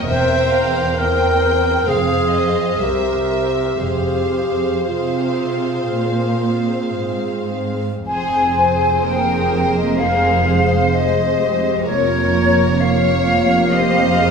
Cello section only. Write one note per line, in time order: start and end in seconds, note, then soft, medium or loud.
0.08 1.84 E2 soft
1.88 2.79 F2 soft
2.81 3.79 C2 soft
3.81 4.76 F2 soft
4.88 5.90 C3 soft
5.93 6.99 A#2 soft
6.99 8.05 G#2 soft
8.07 11.83 F2 soft
11.86 14.31 F2 soft